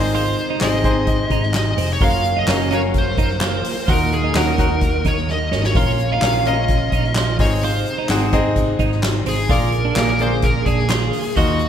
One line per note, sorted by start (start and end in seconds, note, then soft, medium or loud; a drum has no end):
0.00 0.34 G#1 loud
0.00 0.57 G#2 medium
0.00 1.99 C3 medium
0.00 0.57 D#3 medium
0.00 1.99 G#3 medium
0.00 0.47 C4 medium
0.00 0.47 D#4 medium
0.00 1.99 D#4 medium
0.00 0.47 G#4 medium
0.00 0.14 C5 medium
0.00 0.50 D#5 medium
0.14 0.36 F4 loud
0.14 0.62 C5 loud
0.14 hi-hat pedal medium
0.14 open hi-hat medium
0.37 hi-hat pedal medium
0.37 open hi-hat medium
0.50 0.61 D#4 medium
0.61 1.27 G#1 loud
0.61 0.77 C4 medium
0.61 0.83 C4 medium
0.61 0.78 D#4 medium
0.61 0.78 G#4 medium
0.61 0.78 D#5 medium
0.61 1.55 D#5 loud
0.61 snare loud
0.61 clap medium
0.61 hi-hat pedal medium
0.61 open hi-hat medium
0.84 1.50 C4 medium
0.84 0.95 C4 medium
0.84 1.50 D#4 medium
0.84 1.50 G#4 medium
0.84 1.50 C5 medium
0.84 kick loud
0.84 hi-hat pedal medium
0.84 open hi-hat medium
1.07 kick medium
1.07 hi-hat pedal medium
1.07 open hi-hat medium
1.30 1.74 G#1 loud
1.30 1.42 D#4 medium
1.30 kick medium
1.30 hi-hat pedal medium
1.30 open hi-hat medium
1.42 snare soft
1.54 1.91 D#5 medium
1.54 snare loud
1.54 clap medium
1.54 hi-hat pedal medium
1.54 open hi-hat medium
1.77 1.99 F1 medium
1.77 1.89 C4 medium
1.77 hi-hat pedal medium
1.77 open hi-hat medium
1.93 2.03 C#5 loud
2.00 2.44 F#1 loud
2.00 2.67 C#3 medium
2.00 3.86 F#3 medium
2.00 7.35 A#3 medium
2.00 2.34 C#4 medium
2.00 2.23 F4 loud
2.00 2.34 F#4 medium
2.00 5.72 A#4 medium
2.00 2.34 A#4 medium
2.00 2.34 F5 medium
2.00 2.38 F5 loud
2.00 kick loud
2.00 hi-hat pedal medium
2.00 open hi-hat medium
2.24 hi-hat pedal medium
2.24 open hi-hat medium
2.37 2.47 D#4 medium
2.37 2.73 D#5 loud
2.47 3.14 F#1 loud
2.47 2.70 C#4 medium
2.47 2.64 C#4 medium
2.47 2.64 F#4 medium
2.47 2.64 A#4 medium
2.47 2.64 F5 medium
2.47 snare loud
2.47 clap medium
2.47 hi-hat pedal medium
2.47 open hi-hat medium
2.71 2.82 C#4 medium
2.71 3.37 C#4 medium
2.71 3.37 F#4 medium
2.71 3.37 A#4 medium
2.71 2.80 C#5 loud
2.71 3.38 F5 medium
2.71 hi-hat pedal medium
2.71 open hi-hat medium
2.94 kick medium
2.94 hi-hat pedal medium
2.94 open hi-hat medium
2.98 3.93 C5 loud
3.17 3.61 F#1 medium
3.17 3.29 D#4 medium
3.17 kick medium
3.17 hi-hat pedal medium
3.17 open hi-hat medium
3.30 snare soft
3.41 3.74 F4 medium
3.41 snare loud
3.41 clap medium
3.41 hi-hat pedal medium
3.41 open hi-hat medium
3.64 hi-hat pedal medium
3.64 open hi-hat medium
3.88 4.32 D#2 loud
3.88 4.55 A#2 medium
3.88 5.74 D#3 medium
3.88 4.21 D#4 medium
3.88 4.10 F4 loud
3.88 4.21 F#4 medium
3.88 4.22 A#4 medium
3.88 4.11 A#4 loud
3.88 4.22 F#5 medium
3.88 kick loud
3.88 hi-hat pedal medium
3.88 open hi-hat medium
4.12 4.37 G#4 medium
4.12 hi-hat pedal medium
4.12 open hi-hat medium
4.24 4.35 D#4 medium
4.35 5.01 D#2 loud
4.35 4.57 C#4 medium
4.35 4.52 D#4 medium
4.35 4.52 F#4 medium
4.35 4.52 A#4 medium
4.35 5.09 A#4 medium
4.35 4.52 F#5 medium
4.35 snare loud
4.35 clap medium
4.35 hi-hat pedal medium
4.35 open hi-hat medium
4.58 4.69 C#4 medium
4.58 5.24 D#4 medium
4.58 5.24 F#4 medium
4.58 5.24 A#4 medium
4.58 5.25 F#5 medium
4.58 kick medium
4.58 hi-hat pedal medium
4.58 open hi-hat medium
4.81 kick medium
4.81 hi-hat pedal medium
4.81 open hi-hat medium
5.04 5.53 D#2 medium
5.04 5.17 D#4 medium
5.04 5.30 C#5 medium
5.04 kick medium
5.04 hi-hat pedal medium
5.04 open hi-hat medium
5.17 snare soft
5.29 5.65 D#5 medium
5.29 snare medium
5.51 5.73 G#1 loud
5.51 5.63 C#4 medium
5.51 snare medium
5.64 6.13 C#5 medium
5.64 snare loud
5.75 6.19 A#1 loud
5.75 7.38 C#3 medium
5.75 6.08 C#4 medium
5.75 6.08 F4 medium
5.75 7.38 F4 medium
5.75 5.98 F4 loud
5.75 6.09 A#4 medium
5.75 6.09 F5 medium
5.75 kick loud
5.75 hi-hat pedal medium
5.75 open hi-hat medium
5.98 hi-hat pedal medium
5.98 open hi-hat medium
6.12 6.22 D#4 medium
6.12 6.47 F5 medium
6.22 6.89 A#1 loud
6.22 6.39 C#4 medium
6.22 6.45 C#4 medium
6.22 6.39 F4 medium
6.22 6.39 A#4 medium
6.22 6.39 F5 medium
6.22 snare loud
6.22 clap medium
6.22 hi-hat pedal medium
6.22 open hi-hat medium
6.45 6.57 C#4 medium
6.45 7.12 C#4 medium
6.45 7.12 F4 medium
6.45 7.12 A#4 medium
6.45 7.36 D#5 loud
6.45 7.12 F5 medium
6.45 hi-hat pedal medium
6.45 open hi-hat medium
6.68 kick medium
6.68 hi-hat pedal medium
6.68 open hi-hat medium
6.92 7.36 A#1 loud
6.92 7.04 D#4 medium
6.92 kick medium
6.92 hi-hat pedal medium
6.92 open hi-hat medium
7.04 snare soft
7.15 7.50 F4 medium
7.15 snare loud
7.15 clap medium
7.15 hi-hat pedal medium
7.15 open hi-hat medium
7.38 7.83 G#1 medium
7.38 9.47 C3 medium
7.38 9.47 G#3 medium
7.38 7.95 C4 medium
7.38 9.47 D#4 medium
7.38 7.95 D#4 medium
7.38 7.95 G#4 medium
7.38 7.64 C#5 medium
7.38 7.96 D#5 medium
7.38 kick loud
7.38 hi-hat pedal medium
7.38 open hi-hat medium
7.63 7.86 F4 loud
7.63 8.07 C5 medium
7.63 hi-hat pedal medium
7.63 open hi-hat medium
7.86 hi-hat pedal medium
7.86 open hi-hat medium
7.98 8.09 D#4 medium
8.09 8.76 G#1 loud
8.09 8.26 C4 medium
8.09 8.32 C4 medium
8.09 8.26 D#4 medium
8.09 8.26 G#4 medium
8.09 8.26 F#5 medium
8.09 snare loud
8.09 clap medium
8.09 hi-hat pedal medium
8.09 open hi-hat medium
8.32 8.99 C4 medium
8.32 8.44 C4 medium
8.32 8.99 D#4 medium
8.32 8.99 G#4 medium
8.32 8.99 D#5 loud
8.32 kick loud
8.32 hi-hat pedal medium
8.32 open hi-hat medium
8.56 kick medium
8.56 hi-hat pedal medium
8.56 open hi-hat loud
8.79 9.23 G#1 loud
8.79 8.91 D#4 medium
8.79 kick medium
8.79 hi-hat pedal medium
8.79 open hi-hat medium
8.91 snare soft
9.03 snare loud
9.03 clap medium
9.03 hi-hat pedal medium
9.03 open hi-hat medium
9.26 9.48 G#1 loud
9.26 9.38 C4 medium
9.26 9.51 G#4 medium
9.26 hi-hat pedal medium
9.26 open hi-hat medium
9.49 9.93 A#1 loud
9.49 11.35 D3 medium
9.49 11.69 A#3 medium
9.49 9.83 A#3 medium
9.49 9.72 F4 loud
9.49 9.83 F4 medium
9.49 9.83 G#4 medium
9.49 11.35 G#4 medium
9.49 9.97 A#4 loud
9.49 9.83 D5 medium
9.49 kick loud
9.49 hi-hat pedal medium
9.49 open hi-hat medium
9.72 hi-hat pedal medium
9.72 open hi-hat medium
9.85 9.96 D4 medium
9.96 10.63 A#1 loud
9.96 10.13 A#3 medium
9.96 10.19 A#3 medium
9.96 10.13 F4 medium
9.96 10.13 G#4 medium
9.96 10.09 A#4 loud
9.96 10.13 D5 medium
9.96 snare loud
9.96 clap medium
9.96 hi-hat pedal medium
9.96 open hi-hat medium
10.10 10.21 A#4 loud
10.19 10.86 A#3 medium
10.19 10.31 A#3 medium
10.19 10.86 F4 medium
10.19 10.86 G#4 medium
10.19 10.45 C5 loud
10.19 10.86 D5 medium
10.19 hi-hat pedal medium
10.19 open hi-hat medium
10.42 10.65 A#4 loud
10.42 kick medium
10.42 hi-hat pedal medium
10.42 open hi-hat loud
10.66 11.10 A#1 medium
10.66 10.78 D4 medium
10.66 11.36 G#4 loud
10.66 kick medium
10.66 hi-hat pedal medium
10.66 open hi-hat medium
10.78 snare soft
10.89 11.23 F4 medium
10.89 snare loud
10.89 clap medium
10.89 hi-hat pedal medium
10.89 open hi-hat medium
11.13 hi-hat pedal medium
11.13 open hi-hat medium
11.36 11.69 D#2 loud
11.36 11.69 A#2 medium
11.36 11.69 D#3 medium
11.36 11.69 A#3 medium
11.36 11.69 D#4 medium
11.36 11.59 F4 loud
11.36 11.69 F#4 medium
11.36 11.69 D#5 medium
11.36 kick loud
11.36 hi-hat pedal medium
11.36 open hi-hat medium
11.59 hi-hat pedal medium
11.59 open hi-hat medium